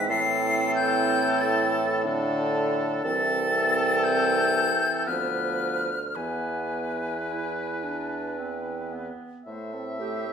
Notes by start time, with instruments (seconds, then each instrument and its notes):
Already playing: bassoon G#2, clarinet C4
0.09 bassoon A2, french horn E3, oboe A4, flute C7
0.75 flute G6
1.41 flute A6
2.05 french horn D3, clarinet D4, oboe A4
3.03 bassoon C2, french horn E3, clarinet C4, oboe A4, flute A6
4.04 flute G6
5.07 bassoon D2, french horn F3, clarinet B3, oboe B4, flute F6
6.15 bassoon E2, french horn E3, clarinet B3, oboe B4, flute G#5
7.28 clarinet E4
7.84 clarinet D4
8.38 clarinet C4
8.93 clarinet B3
9.46 bassoon A2, french horn A3, flute C5, oboe E5
9.73 french horn C4, flute A4
10.00 french horn A3, clarinet G4, flute C5
10.26 french horn C4, flute A4